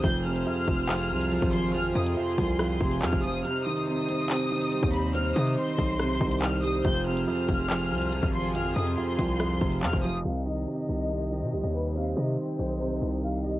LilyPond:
<<
  \new Staff \with { instrumentName = "Violin section" } { \time 4/4 \key c \minor \tempo 4 = 141 g'''8 f'''8 f'''2~ f'''8 c'''8 | f'''8 ees'''8 c'''2 f'''8 ees'''8 | f'''8 ees'''8 ees'''2~ ees'''8 b''8 | f'''8 ees'''8 c'''2 f'''8 ees'''8 |
g'''8 f'''8 f'''2~ f'''8 c'''8 | f'''8 ees'''8 c'''2 f'''8 ees'''8 | f''8 ees''8 ees''2~ ees''8 b'8 | f''8 ees''8 c''2 f''8 ees''8 | }
  \new Staff \with { instrumentName = "String section" } { \time 4/4 \key c \minor << { c''1~ | c''1 | c''1~ | c''1~ |
c''1~ | c''1 | ees''1~ | ees''1 | } \\ { <f f' aes'>1~ | <f f' aes'>1 | <g c' ees'>1~ | <g c' ees'>1 |
<f f' aes'>1~ | <f f' aes'>1 | <ees c' g'>1~ | <ees c' g'>1 | } >> }
  \new Staff \with { instrumentName = "Grand piano" } { \clef bass \time 4/4 \key c \minor f,8 c8 f,8 f,8 f,8 c8 f8 f8 | f,8 c8 f,8 f,8 f,8 c8 f8 f8 | c8 ees8 c8 c8 c8 ees8 g8 g8 | c'8 ees4. c8 ees8 g8 g8 |
f,8 c8 f,8 f,8 f,8 c8 f8 f8 | f,8 c8 f,8 f,8 f,8 c8 f8 f8 | c8 ees8 c8 c8 c8 ees8 g8 g8 | c'8 ees4. c8 ees8 g8 g8 | }
  \new Staff \with { instrumentName = "808-style bass" } { \clef bass \time 4/4 \key c \minor f,,4 r8 f,,4 c,8. aes,,8.~ | aes,,8 f,8 r8 c,4 f,,8 f,16 f,,8. | r2. r16 ees,8.~ | ees,8 c8 r8 b,,4 c,4. |
f,,4 r8 f,,4 c,8. aes,,8.~ | aes,,8 f,8 r8 c,4 f,,8 f,16 f,,8. | c,4 r8 c,4~ c,16 c16 c,16 ees,8.~ | ees,8 c8 r8 b,,4 c,4. | }
  \new DrumStaff \with { instrumentName = "Drums" } \drummode { \time 4/4 <hh bd>8. hh16 r8 <hh bd>8 hc8. hh16 hh16 bd16 hh8 | hh8. hh16 r8 <hh bd>8 <hh ss>8 bd16 hh16 <hc hh>16 bd16 hh8 | hh8. hh16 r8 hh8 hc8. hh16 hh16 bd16 hh8 | hh8. hh16 r8 <hh bd>8 <hh ss>8 bd16 hh16 hc8 hho8 |
<hh bd>8. hh16 r8 <hh bd>8 hc8. hh16 hh16 bd16 hh8 | hh8. hh16 r8 <hh bd>8 <hh ss>8 bd16 hh16 <hc hh>16 bd16 hh8 | r8. hh16 r8 hh8 r8. hh16 hh8 hh8 | hh8. hh16 r8 hh8 hh8. hh16 r8 hh8 | }
>>